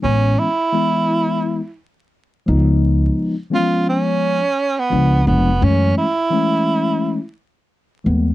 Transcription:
X:1
M:4/4
L:1/16
Q:"Swing 16ths" 1/4=86
K:C#m
V:1 name="Tenor saxophone"
C2 E8 z6 | z4 ^E2 C4- C B,3 B,2 | C2 E8 z6 |]
V:2 name="Tine electric piano" clef=bass
[E,G,B,C]2 z2 [E,G,B,E]4 z6 [^E,G,B,D]2- | [^E,G,B,D]2 z2 [=E,^E,G,B,C]4 z4 [E,G,B,=D]2 [E,G,B,D]2 | [E,G,A,C]2 z2 [E,G,A,C]4 z6 [E,G,A,B,]2 |]
V:3 name="Upright bass" clef=bass
A,,,2 z12 C,,2- | C,,2 z8 z2 C,,2 ^E,,,2 | F,,2 z12 D,,2 |]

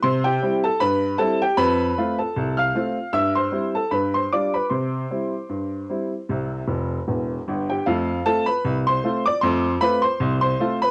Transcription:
X:1
M:2/4
L:1/16
Q:"Swing 16ths" 1/4=77
K:Flyd
V:1 name="Upright piano"
[cc'] [Gg]2 [Aa] [Bb]2 [Aa] [Gg] | [Bb]3 [Aa]2 [ff']3 | [ee'] [cc']2 [Aa] [Bb] [cc'] [dd'] [Bb] | [cc']8- |
[cc']6 z [Gg] | [Ff]2 [Aa] [Bb]2 [cc']2 [dd'] | [cc']2 [Bb] [cc']2 [cc']2 [Bb] |]
V:2 name="Upright piano"
C,2 [G,CE]2 G,,2 [G,CE]2 | F,,2 [A,CF]2 C,,2 [A,CF]2 | G,,2 [G,CE]2 G,,2 [G,DF]2 | C,2 [G,CE]2 G,,2 [G,CE]2 |
[C,,C,]2 [F,,,F,,]2 [E,,,E,,]2 [G,,,G,,]2 | [F,,A,]2 [A,CF]2 C,,2 [A,CF]2 | [F,,A,]2 [A,CF]2 C,,2 [A,CF]2 |]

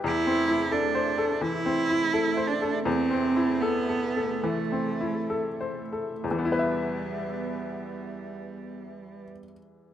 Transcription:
X:1
M:4/4
L:1/8
Q:1/4=73
K:Em
V:1 name="Analog synth pad"
[A,Ae]8- | [A,Ae]8 | [B,Be]8 |]
V:2 name="Upright piano"
(3E,, C E (3A c A (3E, C E (3A c A | (3E,, C E (3A A A (3E, C E (3A c A | [E,,E,B,EBe]8 |]
V:3 name="Cello"
E2 D2 E3 D | C2 B,2 A,3 z | G,8 |]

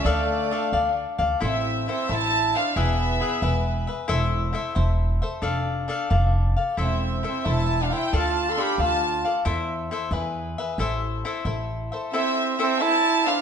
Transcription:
X:1
M:6/8
L:1/16
Q:3/8=90
K:Dm
V:1 name="Violin section"
d8 z4 | [K:Am] e4 e2 a4 f2 | e8- e2 z2 | z12 |
z12 | e4 e2 a3 f g2 | a3 c' b2 a4 z2 | z12 |
z12 | e4 e2 a4 f2 |]
V:2 name="Cavaquinho"
[DAdf]4 [DAdf]2 [DAdf]4 [Adf]2 | [K:Am] [EAce]4 [EAce]2 [EAce]4 [Ace]2 | [E^GBe]4 [EGBe]2 [EGBe]4 [GBe]2 | [EAce]4 [EAce]2 [EAce]4 [Ace]2 |
[DAdf]4 [DAdf]2 [DAdf]4 [Adf]2 | [EAce]4 [EAce]2 [EAce]4 [Ace]2 | [DAdf]4 [DAdf]2 [DAdf]4 [Adf]2 | [EAce]4 [EAce]2 [E^GBe]4 [GBe]2 |
[EAce]4 [EAce]2 [EAce]4 [Ace]2 | [EAce]4 [EAce]2 [EAce]4 [Ace]2 |]
V:3 name="Trumpet"
A,8 z4 | [K:Am] C4 C2 E4 D2 | B,8- B,2 z2 | z12 |
z12 | C4 C2 E3 D E2 | F3 A G2 F4 z2 | z12 |
z12 | C4 C2 E4 D2 |]
V:4 name="Upright bass" clef=bass
D,,6 D,,4 D,,2 | [K:Am] A,,,6 A,,,6 | E,,,6 E,,,6 | E,,,6 E,,,6 |
F,,,6 F,,,6 | E,,,6 E,,,6 | D,,6 D,,6 | E,,6 E,,6 |
A,,,6 A,,,6 | z12 |]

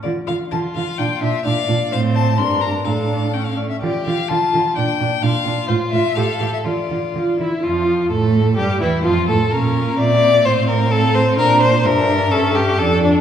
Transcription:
X:1
M:2/4
L:1/16
Q:1/4=128
K:Dm
V:1 name="Violin"
d2 f2 a2 f2 | g2 e2 f4 | f2 a2 c'2 b2 | f4 g f d e |
d2 f2 a4 | g4 f4 | c2 e2 f3 e | d6 z2 |
[K:F] F4 A4 | G2 E2 F2 A2 | f4 e4 | f4 f4 |
[K:Aphr] f4 e4 | e4 d4 |]
V:2 name="Violin"
z4 F4- | F4 d4 | c4 B4 | A6 z2 |
G4 F4 | D4 F4- | F4 A4 | F6 E2 |
[K:F] F4 A4 | G2 E2 F2 A2 | B4 d4 | c2 B2 A2 c2 |
[K:Aphr] B2 c2 B4 | A2 G2 A2 D2 |]
V:3 name="Viola"
F2 F2 F2 F2 | D2 D2 D2 D2 | C4 D4 | D4 ^C2 z2 |
F2 F2 F2 F2 | D2 D2 D2 D2 | F2 F2 G2 G2 | F2 F2 F2 E2 |
[K:F] F,4 A,4 | G,2 E,2 F,2 A,2 | _D4 C4 | C4 C4 |
[K:Aphr] D4 D4 | ^C4 D4 |]
V:4 name="Cello" clef=bass
D,2 D,2 D,2 D,2 | B,,2 B,,2 B,,2 B,,2 | A,,4 G,,4 | A,,6 z2 |
D,2 D,2 D,2 D,2 | B,,2 B,,2 B,,2 B,,2 | A,,2 A,,2 A,,2 A,,2 | D,2 D,2 D,2 D,2 |
[K:F] F,,4 A,,4 | G,,2 E,,2 F,,2 A,,2 | B,,4 B,,4 | A,,8 |
[K:Aphr] B,,4 G,,4 | G,,4 F,,4 |]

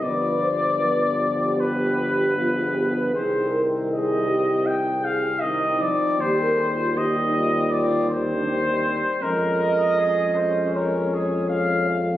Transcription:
X:1
M:4/4
L:1/16
Q:1/4=79
K:Cm
V:1 name="Flugelhorn"
d8 =B8 | c2 z2 e4 g2 f2 e2 d2 | c4 e4 d2 c6 | B4 A2 c2 B2 A2 f2 z2 |]
V:2 name="French horn section"
=B2 c2 B2 G6 F A G B | A2 B2 A2 G4 A2 E4 | G B A F G E F4- F D E2 z2 | e8 _d6 f2 |]
V:3 name="Trombone section"
=B,4 B,8 B,4 | C12 C4 | C4 C8 C4 | _D16 |]
V:4 name="Euphonium" clef=bass
F,4 F,8 F,4 | E,8- E,2 z2 E,2 F,2 | G,4 G,8 G,4 | A,16 |]
V:5 name="Tuba" clef=bass
G,,,16 | C,,12- C,,2 z2 | E,,16 | F,,16 |]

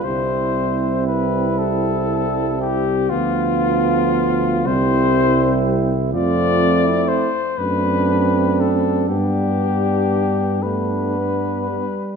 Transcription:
X:1
M:6/8
L:1/16
Q:3/8=39
K:C
V:1 name="Cornet"
c4 B2 A4 G2 | F6 c4 z2 | d4 c2 B4 A2 | G6 B6 |]
V:2 name="Flugelhorn"
E12 | F6 E6 | F3 E2 z D6 | D6 D4- D z |]
V:3 name="Euphonium"
C12 | B,6 C6 | C4 z2 C6 | B,6 B,4 z2 |]
V:4 name="Trombone" clef=bass
G,12 | F,6 G,6 | A,4 z2 A,6 | G,6 A,2 B,2 G,2 |]
V:5 name="Tuba" clef=bass
C,,12 | D,,6 C,,6 | F,,4 z2 ^F,,6 | G,,8- G,,2 z2 |]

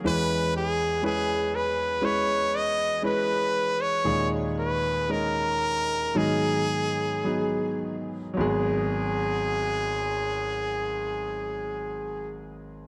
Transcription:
X:1
M:4/4
L:1/16
Q:1/4=56
K:G#m
V:1 name="Trumpet"
B2 G2 G2 B2 c2 d2 B3 c- | c z B2 A4 G6 z2 | G16 |]
V:2 name="Grand piano"
[G,CEB]4 [G,CEB]4 [G,CEB]4 [G,CEB]4 | [G,CDG]4 [G,CDA]4 [F,B,DG]4 [F,B,DG]4 | [F,B,G]16 |]
V:3 name="Grand piano" clef=bass
[E,,E,]16 | [D,,A,,]8 [G,,D,]8 | G,,,16 |]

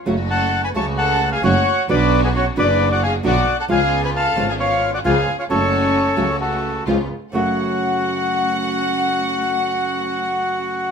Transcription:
X:1
M:4/4
L:1/16
Q:1/4=132
K:F#m
V:1 name="Bandoneon"
z2 [fa]3 [gb] [ac']2 [fa]3 [^eg] [cf]4 | [Bd]3 [GB] [Fc]2 [Bd]3 [df] [^eg]2 [df]3 [fa] | [^eg]3 [gb] [ea]3 [eg] [ce]3 [df] [eg]3 [ce] | [Ac]8 [FA]4 z4 |
F16- | F16 |]
V:2 name="Violin section"
z2 A3 B c2 A3 G F4 | D3 B, C2 D3 F G2 F3 A | G3 B A3 G ^E3 F G3 E | C8 A,4 z4 |
f16- | f16 |]
V:3 name="String section"
[A,CF]6 [A,CF]6 [A,CF]2 z2 | [B,DF]6 [B,DF]6 [B,DF]2 z2 | [B,C^E]6 [B,CE]6 [B,CE]2 z2 | [A,CF]6 [A,CF]6 [B,C^E]2 z2 |
[A,CF]16- | [A,CF]16 |]
V:4 name="Nylon-string guitar"
[C,F,A,CF]2 z4 [C,F,A,CF]2 z4 [C,F,A,CF]2 z2 | [B,,D,B,DF]2 z4 [B,,D,B,DF]2 z4 [B,,D,B,DF]2 z2 | [C,^E,G,B,^E]2 z4 [C,E,G,B,E]2 z4 [C,E,G,B,E]2 z2 | [C,F,A,CF]2 z4 [C,F,A,CF]2 z4 [C,^E,G,B,^E]2 z2 |
[F,,C,F,A,CF]16- | [F,,C,F,A,CF]16 |]
V:5 name="Double bass" clef=bass
F,,,6 C,,6 F,,,2 z2 | B,,,6 F,,,6 B,,,2 z2 | C,,6 G,,,6 C,,2 z2 | F,,,6 C,,6 C,,2 z2 |
F,,,2 z12 z2 | z16 |]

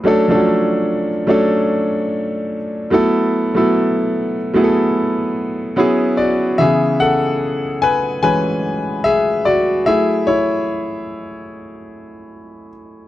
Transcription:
X:1
M:4/4
L:1/16
Q:"Swing 16ths" 1/4=73
K:Emix
V:1 name="Grand piano"
z16 | z12 z2 [Fd]2 | [Ge]2 [Af]4 [Bg]2 [Bg]4 [Ge]2 [Fd]2 | [Ge]2 [Ec]12 z2 |]
V:2 name="Grand piano"
[F,A,CDA] [=F,^F,A,CDA]4 z [F,A,CDA]6 z2 [F,A,B,EA]2 | z [F,A,B,EA]4 z [F,A,B,EGA]6 [F,B,CEG]3 z | [C,E,B,]8 [E,G,C]2 z6 | [F,A,E]16 |]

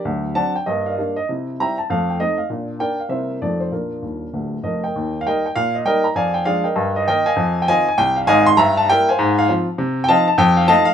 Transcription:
X:1
M:4/4
L:1/16
Q:"Swing" 1/4=198
K:Bb
V:1 name="Upright piano"
z4 [d^fa]2 g2 e2 [Bd=f]4 e2 | z4 [=egb]2 a2 f2 g2 _e2 f2 | z4 [Bdg]2 f2 [Bc=e]4 d2 c2 | [DFB]12 [Be]2 [Beg]2- |
[K:Eb] [Beg]3 f [Beg]2 g2 f2 e2 [Beg]2 b2 | [dfa]2 g2 [Adf]2 [Beg]4 e2 [Beg]2 [efa]2- | [efa]3 g [efa]2 a2 g2 f2 [efa]2 c'2 | [=egb]2 =a2 [Beg]2 [cf_a]4 f2 z4 |
[K:Fmix] z3 g [efa]2 a2 g2 f2 [efa]2 f2 |]
V:2 name="Upright piano" clef=bass
[D,,^F,]4 [F,CD]4 [G,,B,]4 [G,B,D]4 | [C,=E]4 [G,CE]4 [F,,A,]4 [A,C_E]4 | [B,,D]4 [B,D]4 [C,G,B,C=E]4 [F,,F,A,_E]4 | B,,4 [E,,,E,,]4 [D,,,D,,]4 [F,,,F,,]4 |
[K:Eb] E,,4 [G,B,E]4 B,,4 [G,B,E]4 | F,,4 [F,A,D]4 G,,4 [E,B,E]4 | F,,4 [E,CF]4 C,,4 [A,,,A,,]4 | G,,4 [G,B,=E]4 A,,4 [F,CF]4 |
[K:Fmix] C,4 [F,CE]4 F,,4 [F,A,E]4 |]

